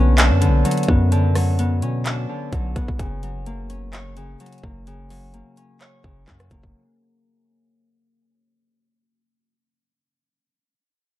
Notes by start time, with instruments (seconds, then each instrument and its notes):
Already playing: 808-style bass B1, harp D3 F#3 B3 C#4
0.18 harp D4, clap, closed hi-hat
0.31 808-style bass F#2
0.41 harp D3, closed hi-hat
0.48 808-style bass B1
0.65 harp F#3, closed hi-hat
0.71 closed hi-hat
0.77 closed hi-hat
0.83 closed hi-hat
0.88 808-style bass F#2, harp B3, kick
1.12 harp D3, closed hi-hat
1.35 harp F#3, cross-stick, open hi-hat
1.59 harp B3, closed hi-hat
1.82 808-style bass B2, harp C#4, closed hi-hat
2.05 harp D4, clap, closed hi-hat
2.29 harp D3
2.53 808-style bass B1, harp F#3, kick, closed hi-hat
2.76 808-style bass B1, harp B3, kick, closed hi-hat
2.88 808-style bass B1, kick
2.99 808-style bass F#1, harp C#3, kick, closed hi-hat
3.23 harp F#3, closed hi-hat
3.46 harp A#3, closed hi-hat
3.70 harp C#4, closed hi-hat
3.93 harp C#5, clap, closed hi-hat
4.17 harp C#3, closed hi-hat
4.40 harp F#3, closed hi-hat
4.46 closed hi-hat
4.53 closed hi-hat
4.58 closed hi-hat
4.63 808-style bass F#1, harp A#3, kick
4.87 harp C#3, closed hi-hat
5.10 harp F#3, open hi-hat
5.34 harp A#3, closed hi-hat
5.57 harp C#4, closed hi-hat
5.81 harp C#5, clap, closed hi-hat
6.04 808-style bass F#1, harp C#3, kick
6.27 808-style bass F#2, harp F#3, kick, clap, closed hi-hat
6.40 cross-stick, closed hi-hat
6.51 808-style bass F#1, harp A#3, kick, closed hi-hat
6.63 808-style bass F#1, kick